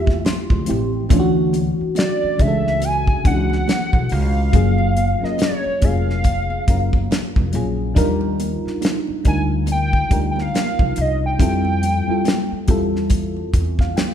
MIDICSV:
0, 0, Header, 1, 6, 480
1, 0, Start_track
1, 0, Tempo, 857143
1, 619, Time_signature, 4, 2, 24, 8
1, 7920, End_track
2, 0, Start_track
2, 0, Title_t, "Analog synth lead"
2, 0, Program_c, 0, 81
2, 0, Note_on_c, 0, 76, 105
2, 383, Note_off_c, 0, 76, 0
2, 1106, Note_on_c, 0, 74, 97
2, 1350, Note_on_c, 0, 76, 100
2, 1358, Note_off_c, 0, 74, 0
2, 1591, Note_on_c, 0, 80, 113
2, 1599, Note_off_c, 0, 76, 0
2, 1825, Note_off_c, 0, 80, 0
2, 1831, Note_on_c, 0, 78, 113
2, 2314, Note_on_c, 0, 77, 107
2, 2323, Note_off_c, 0, 78, 0
2, 2934, Note_on_c, 0, 75, 86
2, 2942, Note_off_c, 0, 77, 0
2, 3026, Note_off_c, 0, 75, 0
2, 3036, Note_on_c, 0, 73, 94
2, 3271, Note_on_c, 0, 77, 104
2, 3280, Note_off_c, 0, 73, 0
2, 4225, Note_off_c, 0, 77, 0
2, 5196, Note_on_c, 0, 80, 100
2, 5275, Note_off_c, 0, 80, 0
2, 5442, Note_on_c, 0, 79, 116
2, 5744, Note_off_c, 0, 79, 0
2, 5775, Note_on_c, 0, 79, 74
2, 5833, Note_on_c, 0, 77, 103
2, 5842, Note_off_c, 0, 79, 0
2, 6166, Note_on_c, 0, 75, 87
2, 6175, Note_off_c, 0, 77, 0
2, 6295, Note_off_c, 0, 75, 0
2, 6306, Note_on_c, 0, 79, 107
2, 7231, Note_off_c, 0, 79, 0
2, 7920, End_track
3, 0, Start_track
3, 0, Title_t, "FM electric piano"
3, 0, Program_c, 1, 5
3, 0, Control_c, 1, 64, 127
3, 0, Note_on_c, 1, 53, 68
3, 0, Note_on_c, 1, 56, 51
3, 0, Note_on_c, 1, 57, 62
3, 0, Note_on_c, 1, 60, 66
3, 0, Note_on_c, 1, 64, 64
3, 0, Note_on_c, 1, 65, 71
3, 0, Note_on_c, 1, 67, 77
3, 143, Note_on_c, 1, 84, 68
3, 301, Note_off_c, 1, 65, 0
3, 306, Note_off_c, 1, 60, 0
3, 309, Note_off_c, 1, 64, 0
3, 311, Note_off_c, 1, 67, 0
3, 322, Note_off_c, 1, 57, 0
3, 367, Note_off_c, 1, 53, 0
3, 367, Note_on_c, 1, 53, 80
3, 373, Note_on_c, 1, 57, 75
3, 378, Note_on_c, 1, 60, 78
3, 384, Note_on_c, 1, 64, 75
3, 389, Note_on_c, 1, 67, 88
3, 576, Note_off_c, 1, 53, 0
3, 579, Note_off_c, 1, 57, 0
3, 582, Note_off_c, 1, 60, 0
3, 585, Note_off_c, 1, 64, 0
3, 587, Note_off_c, 1, 67, 0
3, 599, Note_off_c, 1, 84, 0
3, 613, Note_on_c, 1, 52, 115
3, 618, Note_on_c, 1, 57, 98
3, 621, Note_on_c, 1, 61, 99
3, 625, Control_c, 1, 64, 0
3, 629, Note_on_c, 1, 62, 98
3, 630, Note_off_c, 1, 56, 0
3, 633, Note_on_c, 1, 65, 96
3, 669, Note_off_c, 1, 65, 0
3, 669, Note_on_c, 1, 66, 122
3, 728, Control_c, 1, 64, 127
3, 1220, Note_off_c, 1, 52, 0
3, 1222, Note_off_c, 1, 57, 0
3, 1224, Note_off_c, 1, 61, 0
3, 1228, Note_off_c, 1, 62, 0
3, 1247, Note_off_c, 1, 66, 0
3, 1328, Note_on_c, 1, 52, 77
3, 1333, Note_on_c, 1, 57, 68
3, 1338, Note_on_c, 1, 61, 67
3, 1344, Note_on_c, 1, 62, 64
3, 1349, Note_on_c, 1, 68, 67
3, 1384, Note_on_c, 1, 69, 82
3, 1387, Note_off_c, 1, 68, 0
3, 1740, Note_off_c, 1, 52, 0
3, 1742, Note_off_c, 1, 57, 0
3, 1745, Note_off_c, 1, 61, 0
3, 1748, Note_off_c, 1, 62, 0
3, 1768, Note_off_c, 1, 69, 0
3, 1814, Note_on_c, 1, 52, 76
3, 1817, Note_on_c, 1, 57, 67
3, 1824, Note_on_c, 1, 61, 65
3, 1828, Note_on_c, 1, 62, 64
3, 1833, Note_on_c, 1, 64, 68
3, 1869, Note_off_c, 1, 64, 0
3, 1869, Note_on_c, 1, 66, 80
3, 2420, Note_off_c, 1, 52, 0
3, 2422, Note_off_c, 1, 57, 0
3, 2425, Note_off_c, 1, 61, 0
3, 2427, Note_off_c, 1, 62, 0
3, 2448, Note_off_c, 1, 66, 0
3, 2531, Note_on_c, 1, 54, 93
3, 2538, Note_on_c, 1, 58, 83
3, 2541, Note_on_c, 1, 61, 81
3, 2546, Control_c, 1, 64, 0
3, 2547, Note_on_c, 1, 65, 81
3, 2551, Note_on_c, 1, 68, 95
3, 2632, Control_c, 1, 64, 127
3, 2837, Note_off_c, 1, 54, 0
3, 2840, Note_off_c, 1, 58, 0
3, 2842, Note_off_c, 1, 61, 0
3, 2845, Note_off_c, 1, 65, 0
3, 2847, Note_off_c, 1, 68, 0
3, 2913, Note_on_c, 1, 54, 67
3, 2919, Note_on_c, 1, 58, 61
3, 2923, Note_on_c, 1, 61, 63
3, 2928, Note_on_c, 1, 65, 64
3, 2933, Note_on_c, 1, 70, 71
3, 3200, Note_off_c, 1, 54, 0
3, 3203, Note_off_c, 1, 58, 0
3, 3205, Note_off_c, 1, 61, 0
3, 3207, Note_off_c, 1, 65, 0
3, 3210, Note_off_c, 1, 70, 0
3, 3252, Note_on_c, 1, 54, 73
3, 3257, Note_on_c, 1, 58, 68
3, 3260, Note_on_c, 1, 61, 64
3, 3267, Note_on_c, 1, 65, 63
3, 3270, Note_on_c, 1, 68, 80
3, 3662, Note_off_c, 1, 54, 0
3, 3664, Note_off_c, 1, 58, 0
3, 3666, Note_off_c, 1, 61, 0
3, 3669, Note_off_c, 1, 65, 0
3, 3671, Note_off_c, 1, 68, 0
3, 3734, Note_on_c, 1, 54, 74
3, 3739, Note_on_c, 1, 58, 62
3, 3744, Note_on_c, 1, 61, 62
3, 3749, Note_on_c, 1, 65, 65
3, 3753, Note_on_c, 1, 70, 75
3, 4143, Note_off_c, 1, 54, 0
3, 4145, Note_off_c, 1, 58, 0
3, 4148, Note_off_c, 1, 61, 0
3, 4150, Note_off_c, 1, 65, 0
3, 4152, Note_off_c, 1, 70, 0
3, 4210, Note_on_c, 1, 54, 78
3, 4218, Note_on_c, 1, 58, 71
3, 4223, Note_on_c, 1, 61, 75
3, 4225, Note_on_c, 1, 65, 71
3, 4233, Note_on_c, 1, 68, 91
3, 4418, Note_off_c, 1, 54, 0
3, 4422, Note_off_c, 1, 58, 0
3, 4424, Note_off_c, 1, 61, 0
3, 4425, Note_off_c, 1, 65, 0
3, 4429, Note_off_c, 1, 68, 0
3, 4447, Note_on_c, 1, 53, 89
3, 4452, Note_on_c, 1, 62, 99
3, 4457, Note_on_c, 1, 63, 99
3, 4461, Note_on_c, 1, 65, 98
3, 4466, Control_c, 1, 64, 0
3, 4467, Note_on_c, 1, 70, 124
3, 4483, Note_on_c, 1, 55, 101
3, 4496, Note_off_c, 1, 53, 0
3, 4555, Control_c, 1, 64, 127
3, 5059, Note_off_c, 1, 62, 0
3, 5062, Note_off_c, 1, 63, 0
3, 5063, Note_off_c, 1, 65, 0
3, 5067, Note_off_c, 1, 70, 0
3, 5074, Note_off_c, 1, 55, 0
3, 5173, Note_on_c, 1, 55, 74
3, 5177, Note_on_c, 1, 62, 65
3, 5184, Note_on_c, 1, 63, 67
3, 5189, Note_on_c, 1, 65, 65
3, 5192, Note_on_c, 1, 70, 81
3, 5582, Note_off_c, 1, 55, 0
3, 5584, Note_off_c, 1, 62, 0
3, 5588, Note_off_c, 1, 63, 0
3, 5590, Note_off_c, 1, 65, 0
3, 5592, Note_off_c, 1, 70, 0
3, 5653, Note_on_c, 1, 55, 70
3, 5659, Note_on_c, 1, 62, 62
3, 5663, Note_on_c, 1, 63, 67
3, 5668, Note_on_c, 1, 65, 64
3, 5672, Note_on_c, 1, 70, 80
3, 6259, Note_off_c, 1, 55, 0
3, 6263, Note_off_c, 1, 62, 0
3, 6265, Note_off_c, 1, 63, 0
3, 6267, Note_off_c, 1, 65, 0
3, 6269, Note_off_c, 1, 70, 0
3, 6377, Note_on_c, 1, 55, 93
3, 6382, Note_on_c, 1, 60, 82
3, 6385, Control_c, 1, 64, 0
3, 6385, Note_on_c, 1, 64, 84
3, 6391, Note_on_c, 1, 65, 81
3, 6397, Note_on_c, 1, 69, 98
3, 6475, Control_c, 1, 64, 127
3, 6680, Note_off_c, 1, 55, 0
3, 6682, Note_off_c, 1, 60, 0
3, 6684, Note_off_c, 1, 64, 0
3, 6687, Note_off_c, 1, 65, 0
3, 6690, Note_off_c, 1, 69, 0
3, 6759, Note_on_c, 1, 55, 70
3, 6763, Note_on_c, 1, 60, 61
3, 6771, Note_on_c, 1, 64, 64
3, 6774, Note_on_c, 1, 65, 62
3, 6778, Note_on_c, 1, 69, 74
3, 7043, Note_off_c, 1, 55, 0
3, 7045, Note_off_c, 1, 60, 0
3, 7049, Note_off_c, 1, 64, 0
3, 7050, Note_off_c, 1, 65, 0
3, 7053, Note_off_c, 1, 69, 0
3, 7097, Note_on_c, 1, 55, 90
3, 7102, Note_on_c, 1, 60, 79
3, 7108, Note_on_c, 1, 64, 81
3, 7111, Note_on_c, 1, 65, 79
3, 7115, Note_on_c, 1, 69, 101
3, 7504, Note_off_c, 1, 55, 0
3, 7507, Note_off_c, 1, 60, 0
3, 7510, Note_off_c, 1, 64, 0
3, 7511, Note_off_c, 1, 65, 0
3, 7513, Note_off_c, 1, 69, 0
3, 7731, Note_on_c, 1, 77, 63
3, 7820, Note_off_c, 1, 77, 0
3, 7821, Note_on_c, 1, 79, 65
3, 7920, Note_off_c, 1, 79, 0
3, 7920, End_track
4, 0, Start_track
4, 0, Title_t, "Upright bass"
4, 0, Program_c, 2, 32
4, 0, Note_on_c, 2, 40, 88
4, 110, Note_off_c, 2, 40, 0
4, 287, Note_on_c, 2, 38, 88
4, 369, Note_off_c, 2, 38, 0
4, 392, Note_on_c, 2, 33, 91
4, 595, Note_off_c, 2, 33, 0
4, 623, Note_on_c, 2, 38, 97
4, 953, Note_off_c, 2, 38, 0
4, 1345, Note_on_c, 2, 37, 93
4, 1759, Note_off_c, 2, 37, 0
4, 1824, Note_on_c, 2, 37, 84
4, 2030, Note_off_c, 2, 37, 0
4, 2207, Note_on_c, 2, 35, 84
4, 2290, Note_off_c, 2, 35, 0
4, 2307, Note_on_c, 2, 37, 102
4, 2512, Note_off_c, 2, 37, 0
4, 2542, Note_on_c, 2, 30, 100
4, 2872, Note_off_c, 2, 30, 0
4, 3266, Note_on_c, 2, 29, 87
4, 3679, Note_off_c, 2, 29, 0
4, 3745, Note_on_c, 2, 30, 85
4, 3951, Note_off_c, 2, 30, 0
4, 4129, Note_on_c, 2, 29, 78
4, 4211, Note_off_c, 2, 29, 0
4, 4226, Note_on_c, 2, 34, 84
4, 4431, Note_off_c, 2, 34, 0
4, 4464, Note_on_c, 2, 39, 99
4, 4793, Note_off_c, 2, 39, 0
4, 5187, Note_on_c, 2, 38, 93
4, 5600, Note_off_c, 2, 38, 0
4, 5665, Note_on_c, 2, 38, 84
4, 5871, Note_off_c, 2, 38, 0
4, 6048, Note_on_c, 2, 36, 80
4, 6130, Note_off_c, 2, 36, 0
4, 6146, Note_on_c, 2, 36, 84
4, 6351, Note_off_c, 2, 36, 0
4, 6385, Note_on_c, 2, 41, 99
4, 6714, Note_off_c, 2, 41, 0
4, 7108, Note_on_c, 2, 40, 92
4, 7520, Note_off_c, 2, 40, 0
4, 7584, Note_on_c, 2, 40, 85
4, 7790, Note_off_c, 2, 40, 0
4, 7920, End_track
5, 0, Start_track
5, 0, Title_t, "Muted upright bass strokes"
5, 1013, Note_on_c, 9, 29, 49
5, 1069, Note_off_c, 9, 29, 0
5, 1252, Note_on_c, 9, 29, 50
5, 1308, Note_off_c, 9, 29, 0
5, 2930, Note_on_c, 9, 29, 44
5, 2986, Note_off_c, 9, 29, 0
5, 3170, Note_on_c, 9, 29, 46
5, 3226, Note_off_c, 9, 29, 0
5, 4846, Note_on_c, 9, 29, 44
5, 4902, Note_off_c, 9, 29, 0
5, 5089, Note_on_c, 9, 29, 46
5, 5145, Note_off_c, 9, 29, 0
5, 6769, Note_on_c, 9, 29, 46
5, 6825, Note_off_c, 9, 29, 0
5, 7011, Note_on_c, 9, 29, 49
5, 7067, Note_off_c, 9, 29, 0
5, 7920, End_track
6, 0, Start_track
6, 0, Title_t, "Drums"
6, 36, Note_on_c, 9, 63, 57
6, 41, Note_on_c, 9, 36, 85
6, 53, Note_on_c, 9, 38, 31
6, 92, Note_off_c, 9, 63, 0
6, 97, Note_off_c, 9, 36, 0
6, 109, Note_off_c, 9, 38, 0
6, 139, Note_on_c, 9, 62, 35
6, 139, Note_on_c, 9, 63, 71
6, 144, Note_on_c, 9, 42, 80
6, 147, Note_on_c, 9, 38, 98
6, 195, Note_off_c, 9, 62, 0
6, 195, Note_off_c, 9, 63, 0
6, 200, Note_off_c, 9, 42, 0
6, 203, Note_off_c, 9, 38, 0
6, 279, Note_on_c, 9, 64, 64
6, 281, Note_on_c, 9, 36, 89
6, 335, Note_off_c, 9, 64, 0
6, 337, Note_off_c, 9, 36, 0
6, 371, Note_on_c, 9, 42, 67
6, 427, Note_off_c, 9, 42, 0
6, 612, Note_on_c, 9, 62, 30
6, 612, Note_on_c, 9, 64, 63
6, 618, Note_on_c, 9, 36, 104
6, 619, Note_on_c, 9, 42, 93
6, 668, Note_off_c, 9, 62, 0
6, 668, Note_off_c, 9, 64, 0
6, 674, Note_off_c, 9, 36, 0
6, 675, Note_off_c, 9, 42, 0
6, 857, Note_on_c, 9, 63, 64
6, 861, Note_on_c, 9, 42, 61
6, 913, Note_off_c, 9, 63, 0
6, 917, Note_off_c, 9, 42, 0
6, 1093, Note_on_c, 9, 62, 32
6, 1093, Note_on_c, 9, 63, 65
6, 1098, Note_on_c, 9, 42, 83
6, 1114, Note_on_c, 9, 38, 117
6, 1149, Note_off_c, 9, 62, 0
6, 1149, Note_off_c, 9, 63, 0
6, 1154, Note_off_c, 9, 42, 0
6, 1170, Note_off_c, 9, 38, 0
6, 1340, Note_on_c, 9, 42, 68
6, 1341, Note_on_c, 9, 36, 93
6, 1396, Note_off_c, 9, 42, 0
6, 1397, Note_off_c, 9, 36, 0
6, 1496, Note_on_c, 9, 38, 33
6, 1552, Note_off_c, 9, 38, 0
6, 1570, Note_on_c, 9, 62, 32
6, 1570, Note_on_c, 9, 63, 52
6, 1578, Note_on_c, 9, 42, 79
6, 1626, Note_off_c, 9, 62, 0
6, 1626, Note_off_c, 9, 63, 0
6, 1634, Note_off_c, 9, 42, 0
6, 1719, Note_on_c, 9, 62, 31
6, 1722, Note_on_c, 9, 36, 85
6, 1775, Note_off_c, 9, 62, 0
6, 1778, Note_off_c, 9, 36, 0
6, 1820, Note_on_c, 9, 36, 100
6, 1821, Note_on_c, 9, 42, 65
6, 1876, Note_off_c, 9, 36, 0
6, 1877, Note_off_c, 9, 42, 0
6, 1958, Note_on_c, 9, 63, 58
6, 1974, Note_on_c, 9, 38, 33
6, 2014, Note_off_c, 9, 63, 0
6, 2030, Note_off_c, 9, 38, 0
6, 2059, Note_on_c, 9, 62, 34
6, 2059, Note_on_c, 9, 63, 77
6, 2066, Note_on_c, 9, 42, 79
6, 2068, Note_on_c, 9, 38, 100
6, 2115, Note_off_c, 9, 62, 0
6, 2115, Note_off_c, 9, 63, 0
6, 2122, Note_off_c, 9, 42, 0
6, 2124, Note_off_c, 9, 38, 0
6, 2201, Note_on_c, 9, 64, 65
6, 2202, Note_on_c, 9, 36, 88
6, 2257, Note_off_c, 9, 64, 0
6, 2258, Note_off_c, 9, 36, 0
6, 2292, Note_on_c, 9, 46, 47
6, 2348, Note_off_c, 9, 46, 0
6, 2538, Note_on_c, 9, 36, 109
6, 2538, Note_on_c, 9, 62, 30
6, 2538, Note_on_c, 9, 64, 63
6, 2540, Note_on_c, 9, 42, 90
6, 2594, Note_off_c, 9, 36, 0
6, 2594, Note_off_c, 9, 62, 0
6, 2594, Note_off_c, 9, 64, 0
6, 2596, Note_off_c, 9, 42, 0
6, 2680, Note_on_c, 9, 62, 33
6, 2736, Note_off_c, 9, 62, 0
6, 2781, Note_on_c, 9, 42, 59
6, 2785, Note_on_c, 9, 63, 64
6, 2837, Note_off_c, 9, 42, 0
6, 2841, Note_off_c, 9, 63, 0
6, 2938, Note_on_c, 9, 38, 39
6, 2994, Note_off_c, 9, 38, 0
6, 3014, Note_on_c, 9, 62, 32
6, 3014, Note_on_c, 9, 63, 67
6, 3018, Note_on_c, 9, 42, 81
6, 3034, Note_on_c, 9, 38, 115
6, 3070, Note_off_c, 9, 62, 0
6, 3070, Note_off_c, 9, 63, 0
6, 3074, Note_off_c, 9, 42, 0
6, 3090, Note_off_c, 9, 38, 0
6, 3160, Note_on_c, 9, 62, 30
6, 3216, Note_off_c, 9, 62, 0
6, 3257, Note_on_c, 9, 42, 66
6, 3261, Note_on_c, 9, 36, 94
6, 3313, Note_off_c, 9, 42, 0
6, 3317, Note_off_c, 9, 36, 0
6, 3416, Note_on_c, 9, 38, 35
6, 3472, Note_off_c, 9, 38, 0
6, 3489, Note_on_c, 9, 63, 49
6, 3495, Note_on_c, 9, 42, 77
6, 3498, Note_on_c, 9, 36, 85
6, 3545, Note_off_c, 9, 63, 0
6, 3551, Note_off_c, 9, 42, 0
6, 3554, Note_off_c, 9, 36, 0
6, 3641, Note_on_c, 9, 62, 29
6, 3697, Note_off_c, 9, 62, 0
6, 3739, Note_on_c, 9, 42, 62
6, 3740, Note_on_c, 9, 36, 94
6, 3795, Note_off_c, 9, 42, 0
6, 3796, Note_off_c, 9, 36, 0
6, 3881, Note_on_c, 9, 36, 80
6, 3881, Note_on_c, 9, 63, 58
6, 3937, Note_off_c, 9, 36, 0
6, 3937, Note_off_c, 9, 63, 0
6, 3981, Note_on_c, 9, 62, 33
6, 3981, Note_on_c, 9, 63, 77
6, 3986, Note_on_c, 9, 42, 81
6, 3989, Note_on_c, 9, 38, 102
6, 4037, Note_off_c, 9, 62, 0
6, 4037, Note_off_c, 9, 63, 0
6, 4042, Note_off_c, 9, 42, 0
6, 4045, Note_off_c, 9, 38, 0
6, 4123, Note_on_c, 9, 36, 88
6, 4127, Note_on_c, 9, 62, 30
6, 4127, Note_on_c, 9, 64, 68
6, 4179, Note_off_c, 9, 36, 0
6, 4183, Note_off_c, 9, 62, 0
6, 4183, Note_off_c, 9, 64, 0
6, 4215, Note_on_c, 9, 42, 64
6, 4271, Note_off_c, 9, 42, 0
6, 4457, Note_on_c, 9, 62, 29
6, 4457, Note_on_c, 9, 64, 65
6, 4460, Note_on_c, 9, 36, 109
6, 4463, Note_on_c, 9, 42, 90
6, 4513, Note_off_c, 9, 62, 0
6, 4513, Note_off_c, 9, 64, 0
6, 4516, Note_off_c, 9, 36, 0
6, 4519, Note_off_c, 9, 42, 0
6, 4597, Note_on_c, 9, 62, 33
6, 4653, Note_off_c, 9, 62, 0
6, 4702, Note_on_c, 9, 42, 62
6, 4703, Note_on_c, 9, 63, 68
6, 4758, Note_off_c, 9, 42, 0
6, 4759, Note_off_c, 9, 63, 0
6, 4857, Note_on_c, 9, 38, 38
6, 4913, Note_off_c, 9, 38, 0
6, 4936, Note_on_c, 9, 63, 68
6, 4939, Note_on_c, 9, 42, 83
6, 4955, Note_on_c, 9, 38, 118
6, 4992, Note_off_c, 9, 63, 0
6, 4995, Note_off_c, 9, 42, 0
6, 5011, Note_off_c, 9, 38, 0
6, 5081, Note_on_c, 9, 62, 30
6, 5137, Note_off_c, 9, 62, 0
6, 5179, Note_on_c, 9, 42, 63
6, 5182, Note_on_c, 9, 36, 90
6, 5235, Note_off_c, 9, 42, 0
6, 5238, Note_off_c, 9, 36, 0
6, 5411, Note_on_c, 9, 62, 32
6, 5411, Note_on_c, 9, 63, 51
6, 5415, Note_on_c, 9, 42, 73
6, 5467, Note_off_c, 9, 62, 0
6, 5467, Note_off_c, 9, 63, 0
6, 5471, Note_off_c, 9, 42, 0
6, 5560, Note_on_c, 9, 62, 29
6, 5562, Note_on_c, 9, 36, 80
6, 5616, Note_off_c, 9, 62, 0
6, 5618, Note_off_c, 9, 36, 0
6, 5661, Note_on_c, 9, 36, 93
6, 5661, Note_on_c, 9, 42, 67
6, 5717, Note_off_c, 9, 36, 0
6, 5717, Note_off_c, 9, 42, 0
6, 5801, Note_on_c, 9, 63, 60
6, 5816, Note_on_c, 9, 38, 33
6, 5857, Note_off_c, 9, 63, 0
6, 5872, Note_off_c, 9, 38, 0
6, 5905, Note_on_c, 9, 62, 33
6, 5905, Note_on_c, 9, 63, 73
6, 5910, Note_on_c, 9, 42, 81
6, 5912, Note_on_c, 9, 38, 97
6, 5961, Note_off_c, 9, 62, 0
6, 5961, Note_off_c, 9, 63, 0
6, 5966, Note_off_c, 9, 42, 0
6, 5968, Note_off_c, 9, 38, 0
6, 6044, Note_on_c, 9, 36, 89
6, 6050, Note_on_c, 9, 62, 30
6, 6050, Note_on_c, 9, 64, 67
6, 6100, Note_off_c, 9, 36, 0
6, 6106, Note_off_c, 9, 62, 0
6, 6106, Note_off_c, 9, 64, 0
6, 6137, Note_on_c, 9, 42, 67
6, 6193, Note_off_c, 9, 42, 0
6, 6381, Note_on_c, 9, 36, 101
6, 6383, Note_on_c, 9, 64, 67
6, 6385, Note_on_c, 9, 42, 89
6, 6437, Note_off_c, 9, 36, 0
6, 6439, Note_off_c, 9, 64, 0
6, 6441, Note_off_c, 9, 42, 0
6, 6522, Note_on_c, 9, 62, 34
6, 6578, Note_off_c, 9, 62, 0
6, 6624, Note_on_c, 9, 42, 60
6, 6627, Note_on_c, 9, 63, 64
6, 6680, Note_off_c, 9, 42, 0
6, 6683, Note_off_c, 9, 63, 0
6, 6858, Note_on_c, 9, 62, 31
6, 6858, Note_on_c, 9, 63, 68
6, 6862, Note_on_c, 9, 42, 80
6, 6877, Note_on_c, 9, 38, 125
6, 6914, Note_off_c, 9, 62, 0
6, 6914, Note_off_c, 9, 63, 0
6, 6918, Note_off_c, 9, 42, 0
6, 6933, Note_off_c, 9, 38, 0
6, 7005, Note_on_c, 9, 62, 28
6, 7061, Note_off_c, 9, 62, 0
6, 7099, Note_on_c, 9, 42, 68
6, 7102, Note_on_c, 9, 36, 95
6, 7155, Note_off_c, 9, 42, 0
6, 7158, Note_off_c, 9, 36, 0
6, 7257, Note_on_c, 9, 38, 33
6, 7313, Note_off_c, 9, 38, 0
6, 7333, Note_on_c, 9, 62, 30
6, 7333, Note_on_c, 9, 63, 50
6, 7335, Note_on_c, 9, 42, 80
6, 7338, Note_on_c, 9, 36, 83
6, 7389, Note_off_c, 9, 62, 0
6, 7389, Note_off_c, 9, 63, 0
6, 7391, Note_off_c, 9, 42, 0
6, 7394, Note_off_c, 9, 36, 0
6, 7484, Note_on_c, 9, 62, 29
6, 7540, Note_off_c, 9, 62, 0
6, 7580, Note_on_c, 9, 36, 90
6, 7580, Note_on_c, 9, 42, 65
6, 7636, Note_off_c, 9, 36, 0
6, 7636, Note_off_c, 9, 42, 0
6, 7721, Note_on_c, 9, 36, 82
6, 7724, Note_on_c, 9, 63, 59
6, 7733, Note_on_c, 9, 38, 33
6, 7777, Note_off_c, 9, 36, 0
6, 7780, Note_off_c, 9, 63, 0
6, 7789, Note_off_c, 9, 38, 0
6, 7825, Note_on_c, 9, 42, 78
6, 7827, Note_on_c, 9, 38, 102
6, 7827, Note_on_c, 9, 62, 32
6, 7827, Note_on_c, 9, 63, 71
6, 7881, Note_off_c, 9, 42, 0
6, 7883, Note_off_c, 9, 38, 0
6, 7883, Note_off_c, 9, 62, 0
6, 7883, Note_off_c, 9, 63, 0
6, 7920, End_track
0, 0, End_of_file